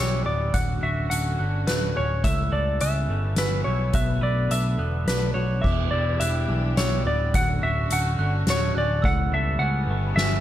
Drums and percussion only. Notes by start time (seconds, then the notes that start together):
0.54 kick, closed hi-hat
1.11 closed hi-hat
1.68 snare, closed hi-hat
2.24 kick, closed hi-hat
2.81 closed hi-hat
3.36 snare, closed hi-hat
3.94 kick, closed hi-hat
4.51 closed hi-hat
5.08 snare, closed hi-hat
5.64 kick, crash
6.21 closed hi-hat
6.77 snare, closed hi-hat
7.34 kick, closed hi-hat
7.91 closed hi-hat
8.47 snare, closed hi-hat
9.04 kick
10.17 snare